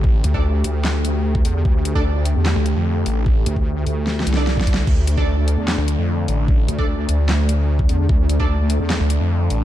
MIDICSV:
0, 0, Header, 1, 6, 480
1, 0, Start_track
1, 0, Key_signature, -1, "minor"
1, 0, Tempo, 402685
1, 48, Time_signature, 4, 2, 24, 8
1, 11491, End_track
2, 0, Start_track
2, 0, Title_t, "Synth stab"
2, 0, Program_c, 0, 62
2, 407, Note_on_c, 0, 62, 77
2, 407, Note_on_c, 0, 69, 67
2, 408, Note_on_c, 0, 74, 84
2, 494, Note_off_c, 0, 62, 0
2, 495, Note_off_c, 0, 69, 0
2, 495, Note_off_c, 0, 74, 0
2, 2328, Note_on_c, 0, 62, 94
2, 2328, Note_on_c, 0, 69, 90
2, 2328, Note_on_c, 0, 74, 100
2, 2415, Note_off_c, 0, 62, 0
2, 2415, Note_off_c, 0, 69, 0
2, 2415, Note_off_c, 0, 74, 0
2, 5208, Note_on_c, 0, 62, 91
2, 5208, Note_on_c, 0, 69, 81
2, 5208, Note_on_c, 0, 74, 96
2, 6139, Note_off_c, 0, 62, 0
2, 6139, Note_off_c, 0, 69, 0
2, 6139, Note_off_c, 0, 74, 0
2, 6167, Note_on_c, 0, 62, 92
2, 6167, Note_on_c, 0, 69, 87
2, 6167, Note_on_c, 0, 74, 101
2, 6254, Note_off_c, 0, 62, 0
2, 6254, Note_off_c, 0, 69, 0
2, 6254, Note_off_c, 0, 74, 0
2, 8087, Note_on_c, 0, 62, 79
2, 8087, Note_on_c, 0, 74, 84
2, 8088, Note_on_c, 0, 69, 70
2, 8174, Note_off_c, 0, 62, 0
2, 8175, Note_off_c, 0, 69, 0
2, 8175, Note_off_c, 0, 74, 0
2, 10007, Note_on_c, 0, 62, 94
2, 10007, Note_on_c, 0, 69, 87
2, 10007, Note_on_c, 0, 74, 98
2, 10094, Note_off_c, 0, 62, 0
2, 10094, Note_off_c, 0, 69, 0
2, 10094, Note_off_c, 0, 74, 0
2, 11491, End_track
3, 0, Start_track
3, 0, Title_t, "Analog synth pad"
3, 0, Program_c, 1, 89
3, 0, Note_on_c, 1, 50, 75
3, 0, Note_on_c, 1, 57, 68
3, 0, Note_on_c, 1, 67, 89
3, 5784, Note_off_c, 1, 67, 0
3, 5806, Note_on_c, 1, 62, 82
3, 11491, Note_off_c, 1, 50, 0
3, 11491, Note_off_c, 1, 57, 0
3, 11491, Note_off_c, 1, 62, 0
3, 11491, End_track
4, 0, Start_track
4, 0, Title_t, "Detuned saw bass"
4, 0, Program_c, 2, 39
4, 0, Note_on_c, 2, 33, 91
4, 269, Note_off_c, 2, 33, 0
4, 3049, Note_on_c, 2, 38, 97
4, 3270, Note_off_c, 2, 38, 0
4, 3290, Note_on_c, 2, 41, 97
4, 3629, Note_off_c, 2, 41, 0
4, 3648, Note_on_c, 2, 33, 95
4, 4109, Note_off_c, 2, 33, 0
4, 6889, Note_on_c, 2, 38, 99
4, 7109, Note_off_c, 2, 38, 0
4, 7129, Note_on_c, 2, 41, 100
4, 7469, Note_off_c, 2, 41, 0
4, 7488, Note_on_c, 2, 33, 93
4, 7949, Note_off_c, 2, 33, 0
4, 10729, Note_on_c, 2, 38, 94
4, 10949, Note_off_c, 2, 38, 0
4, 10969, Note_on_c, 2, 41, 97
4, 11309, Note_off_c, 2, 41, 0
4, 11329, Note_on_c, 2, 33, 94
4, 11491, Note_off_c, 2, 33, 0
4, 11491, End_track
5, 0, Start_track
5, 0, Title_t, "Wobble bass"
5, 0, Program_c, 3, 39
5, 287, Note_on_c, 3, 38, 99
5, 748, Note_off_c, 3, 38, 0
5, 767, Note_on_c, 3, 38, 97
5, 1708, Note_off_c, 3, 38, 0
5, 1726, Note_on_c, 3, 40, 96
5, 1948, Note_off_c, 3, 40, 0
5, 1968, Note_on_c, 3, 38, 97
5, 2309, Note_off_c, 3, 38, 0
5, 2329, Note_on_c, 3, 38, 100
5, 2790, Note_off_c, 3, 38, 0
5, 2808, Note_on_c, 3, 40, 98
5, 3029, Note_off_c, 3, 40, 0
5, 4127, Note_on_c, 3, 38, 93
5, 4589, Note_off_c, 3, 38, 0
5, 4607, Note_on_c, 3, 38, 98
5, 5068, Note_off_c, 3, 38, 0
5, 5087, Note_on_c, 3, 36, 103
5, 5548, Note_off_c, 3, 36, 0
5, 5568, Note_on_c, 3, 36, 99
5, 5789, Note_off_c, 3, 36, 0
5, 5808, Note_on_c, 3, 38, 94
5, 6149, Note_off_c, 3, 38, 0
5, 6169, Note_on_c, 3, 38, 94
5, 6630, Note_off_c, 3, 38, 0
5, 6648, Note_on_c, 3, 40, 95
5, 6869, Note_off_c, 3, 40, 0
5, 7967, Note_on_c, 3, 38, 98
5, 8429, Note_off_c, 3, 38, 0
5, 8447, Note_on_c, 3, 38, 96
5, 9388, Note_off_c, 3, 38, 0
5, 9407, Note_on_c, 3, 40, 102
5, 9628, Note_off_c, 3, 40, 0
5, 9648, Note_on_c, 3, 38, 101
5, 9989, Note_off_c, 3, 38, 0
5, 10009, Note_on_c, 3, 38, 100
5, 10469, Note_off_c, 3, 38, 0
5, 10488, Note_on_c, 3, 40, 97
5, 10709, Note_off_c, 3, 40, 0
5, 11491, End_track
6, 0, Start_track
6, 0, Title_t, "Drums"
6, 48, Note_on_c, 9, 36, 119
6, 167, Note_off_c, 9, 36, 0
6, 287, Note_on_c, 9, 42, 74
6, 406, Note_off_c, 9, 42, 0
6, 409, Note_on_c, 9, 36, 56
6, 528, Note_off_c, 9, 36, 0
6, 767, Note_on_c, 9, 42, 80
6, 886, Note_off_c, 9, 42, 0
6, 1008, Note_on_c, 9, 38, 118
6, 1008, Note_on_c, 9, 39, 87
6, 1127, Note_off_c, 9, 38, 0
6, 1127, Note_off_c, 9, 39, 0
6, 1247, Note_on_c, 9, 42, 84
6, 1367, Note_off_c, 9, 42, 0
6, 1609, Note_on_c, 9, 36, 108
6, 1727, Note_on_c, 9, 46, 97
6, 1728, Note_off_c, 9, 36, 0
6, 1847, Note_off_c, 9, 46, 0
6, 1968, Note_on_c, 9, 36, 110
6, 2087, Note_off_c, 9, 36, 0
6, 2207, Note_on_c, 9, 42, 79
6, 2327, Note_off_c, 9, 42, 0
6, 2329, Note_on_c, 9, 36, 61
6, 2448, Note_off_c, 9, 36, 0
6, 2687, Note_on_c, 9, 42, 83
6, 2806, Note_off_c, 9, 42, 0
6, 2927, Note_on_c, 9, 38, 117
6, 2927, Note_on_c, 9, 39, 90
6, 3047, Note_off_c, 9, 38, 0
6, 3047, Note_off_c, 9, 39, 0
6, 3167, Note_on_c, 9, 42, 85
6, 3287, Note_off_c, 9, 42, 0
6, 3648, Note_on_c, 9, 46, 100
6, 3767, Note_off_c, 9, 46, 0
6, 3888, Note_on_c, 9, 36, 109
6, 4007, Note_off_c, 9, 36, 0
6, 4128, Note_on_c, 9, 42, 77
6, 4247, Note_off_c, 9, 42, 0
6, 4249, Note_on_c, 9, 36, 60
6, 4368, Note_off_c, 9, 36, 0
6, 4608, Note_on_c, 9, 46, 67
6, 4727, Note_off_c, 9, 46, 0
6, 4848, Note_on_c, 9, 38, 71
6, 4967, Note_off_c, 9, 38, 0
6, 5008, Note_on_c, 9, 38, 78
6, 5088, Note_on_c, 9, 42, 81
6, 5127, Note_off_c, 9, 38, 0
6, 5168, Note_on_c, 9, 38, 85
6, 5207, Note_off_c, 9, 42, 0
6, 5287, Note_off_c, 9, 38, 0
6, 5328, Note_on_c, 9, 38, 92
6, 5448, Note_off_c, 9, 38, 0
6, 5449, Note_on_c, 9, 36, 106
6, 5489, Note_on_c, 9, 38, 93
6, 5568, Note_off_c, 9, 36, 0
6, 5568, Note_on_c, 9, 36, 61
6, 5568, Note_on_c, 9, 46, 99
6, 5608, Note_off_c, 9, 38, 0
6, 5649, Note_on_c, 9, 38, 110
6, 5688, Note_off_c, 9, 36, 0
6, 5688, Note_off_c, 9, 46, 0
6, 5768, Note_off_c, 9, 38, 0
6, 5808, Note_on_c, 9, 36, 125
6, 5808, Note_on_c, 9, 49, 75
6, 5927, Note_off_c, 9, 49, 0
6, 5928, Note_off_c, 9, 36, 0
6, 6048, Note_on_c, 9, 42, 80
6, 6168, Note_off_c, 9, 42, 0
6, 6169, Note_on_c, 9, 36, 65
6, 6288, Note_off_c, 9, 36, 0
6, 6529, Note_on_c, 9, 42, 82
6, 6648, Note_off_c, 9, 42, 0
6, 6769, Note_on_c, 9, 38, 124
6, 6769, Note_on_c, 9, 39, 98
6, 6888, Note_off_c, 9, 38, 0
6, 6888, Note_off_c, 9, 39, 0
6, 7008, Note_on_c, 9, 42, 87
6, 7128, Note_off_c, 9, 42, 0
6, 7488, Note_on_c, 9, 46, 97
6, 7607, Note_off_c, 9, 46, 0
6, 7728, Note_on_c, 9, 36, 127
6, 7847, Note_off_c, 9, 36, 0
6, 7968, Note_on_c, 9, 42, 78
6, 8087, Note_off_c, 9, 42, 0
6, 8089, Note_on_c, 9, 36, 65
6, 8208, Note_off_c, 9, 36, 0
6, 8447, Note_on_c, 9, 42, 82
6, 8567, Note_off_c, 9, 42, 0
6, 8688, Note_on_c, 9, 38, 127
6, 8688, Note_on_c, 9, 39, 92
6, 8807, Note_off_c, 9, 38, 0
6, 8807, Note_off_c, 9, 39, 0
6, 8927, Note_on_c, 9, 42, 83
6, 9046, Note_off_c, 9, 42, 0
6, 9289, Note_on_c, 9, 36, 110
6, 9407, Note_on_c, 9, 46, 89
6, 9408, Note_off_c, 9, 36, 0
6, 9526, Note_off_c, 9, 46, 0
6, 9648, Note_on_c, 9, 36, 127
6, 9767, Note_off_c, 9, 36, 0
6, 9887, Note_on_c, 9, 42, 77
6, 10007, Note_off_c, 9, 42, 0
6, 10009, Note_on_c, 9, 36, 66
6, 10128, Note_off_c, 9, 36, 0
6, 10367, Note_on_c, 9, 42, 76
6, 10486, Note_off_c, 9, 42, 0
6, 10608, Note_on_c, 9, 38, 126
6, 10608, Note_on_c, 9, 39, 94
6, 10727, Note_off_c, 9, 38, 0
6, 10727, Note_off_c, 9, 39, 0
6, 10847, Note_on_c, 9, 42, 82
6, 10967, Note_off_c, 9, 42, 0
6, 11328, Note_on_c, 9, 46, 91
6, 11447, Note_off_c, 9, 46, 0
6, 11491, End_track
0, 0, End_of_file